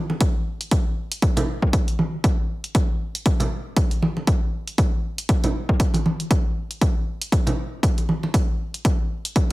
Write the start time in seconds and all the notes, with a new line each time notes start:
0.10 muted conga
0.21 kick, closed hi-hat
0.61 closed hi-hat
0.71 kick, closed hi-hat
1.12 closed hi-hat
1.22 kick, closed hi-hat
1.37 closed hi-hat, low conga
1.62 kick
1.73 kick, closed hi-hat
1.88 closed hi-hat
1.99 high conga
2.24 kick, closed hi-hat
2.64 closed hi-hat
2.75 kick, closed hi-hat
3.15 closed hi-hat
3.26 kick, closed hi-hat
3.40 closed hi-hat, low conga
3.77 kick, closed hi-hat
3.91 closed hi-hat, muted conga
4.02 high conga
4.17 muted conga
4.27 kick, closed hi-hat
4.67 closed hi-hat
4.78 kick, closed hi-hat
5.18 closed hi-hat
5.29 kick, closed hi-hat
5.44 closed hi-hat, low conga
5.69 kick
5.80 kick, closed hi-hat
5.94 closed hi-hat, high conga
6.06 high conga
6.20 closed hi-hat
6.31 kick, closed hi-hat
6.71 closed hi-hat
6.81 kick, closed hi-hat
7.21 closed hi-hat
7.32 kick, closed hi-hat
7.47 closed hi-hat, low conga
7.83 kick, closed hi-hat
7.98 closed hi-hat, muted conga
8.09 high conga
8.23 muted conga
8.34 kick, closed hi-hat
8.74 closed hi-hat
8.85 kick, closed hi-hat
9.25 closed hi-hat
9.36 kick, closed hi-hat